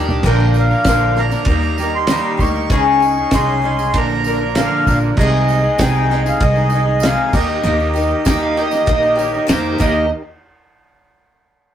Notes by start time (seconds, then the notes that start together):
Already playing: D#2 D#3 G3 A#3 D4 G4
0.08 A#3 D#4 G4, floor tom, tambourine
0.23 A#1 A#2 D3 F3 A#3 D4 F4 A#4 D5 G5, kick, crash
0.27 D4
0.40 F3 A#3 D4 A#4
0.50 G5
0.54 D4 A#4, tambourine
0.58 F3 A#3 F5
0.70 F3 A#3 D4 A#4, tambourine
0.84 A#1 A#2 D3 F3 A#3, kick, snare, ride bell, tambourine
0.89 D4 A#4
1.01 tambourine
1.16 F3 A#3 D4 A#4 A#5, snare, tambourine
1.31 A#3 D4 A#4, snare, tambourine
1.35 F3
1.45 D#2 D#3 G3 A#3 D#4 G4 A#4 D#5, kick, ride bell, tambourine
1.50 D#4 G4
1.62 A#3 D#4 G4, tambourine
1.78 G3 A#3 D#4 G4, tambourine
1.94 A#3 D#4 G4 C6
2.07 D#3 G3 A#3 D#4, snare, ride bell, tambourine
2.12 G4
2.37 D2 G3 A#3 D#4 G4, kick, tambourine
2.41 G4 C#6
2.54 A#3 D#4 G4, tambourine
2.69 C#2 C#3 G#3 C#4 D#4 G#4 C#5 D#5, kick, ride bell
2.86 C#4 D#4 G#4
3.00 D#4 G#4, tambourine
3.04 C#4
3.17 C#4 D#4 G#4, tambourine
3.31 C2 C#3 G#3 C#4 D#4 G#4 C6, kick, snare, ride bell, tambourine
3.49 tambourine
3.62 G#3 C#4 D#4 G#4
3.66 G#4
3.78 C#4 D#4 G#4, tambourine
3.94 A#1 A#2 D3 F3 A#3 D4 F4 A#4 D5 A#5, kick, ride bell, tambourine
3.98 A#4
4.09 F3 A#3 D4 A#4, tambourine
4.24 F3 A#3 D4 A#4, tambourine
4.30 F3
4.41 F3 A#3 D4 A#4
4.55 A#2 D3 F3 A#3 D4 A#4 F5, snare, ride bell, tambourine
4.86 A#1 F3 A#3 D4 A#4, kick, tambourine
4.91 F3 A#3
5.00 F3 A#3 D4 A#4, tambourine
5.16 C2 C3 D#3 G#3 D#4 G#4 C5 D#5, kick, crash
5.32 G#3 D#4 G#4
5.49 D#4 G#4, tambourine
5.54 G#3
5.62 G#3 D#4 G#4
5.77 C2 C3 D#3 G#3 D#4 G#4 G5, kick, snare, ride bell, tambourine
5.95 tambourine
6.08 D#3 G#3 D#4 G#4, snare, tambourine
6.14 G#3
6.24 G#3 D#4 G#4, snare, tambourine
6.29 F5
6.40 C2 D#3 G#3 D#4 G#4 D#5, kick, ride bell
6.55 G#3 D#4 G#4, tambourine
6.70 D#3 G#3 D#4, tambourine
6.74 G#3 G#4
6.86 G#3 D#4 G#4
7.00 C3 D#3 G#3 D#4 F5, snare, ride bell, tambourine
7.05 G#4
7.32 D#2 D#3 A#3 D#4 G4 A#4 D#5, kick, tambourine, crash
7.48 A#3 D#4 G4
7.64 D#2 D#3 A#3 D#4 G4, tambourine
7.79 A#3 D#4 G4, tambourine
7.94 A#3 D#4 G4, tambourine
8.08 A#3 D#4 G4
8.25 D#2 D#3 A#3 D#4 G4 G5, kick, snare, ride bell, tambourine
8.43 F5
8.56 D#3 A#3 D#4 G4 D#5, tambourine
8.71 A#3 D#4 G4, snare, tambourine
8.86 A#1 D#3 A#3 D#4 G4, kick, ride bell
9.03 A#3 D#4 G4, tambourine
9.15 D#3 A#3 G4 C#5, tambourine
9.20 D#4 G4
9.34 A#3 D#4 G4, tambourine
9.49 F2 D#3 A#3 D#4 G4 C5, snare, ride bell, tambourine
9.66 tambourine
9.79 D#2 D#3 A#3 D#4 G4 D#5, kick, crash, tambourine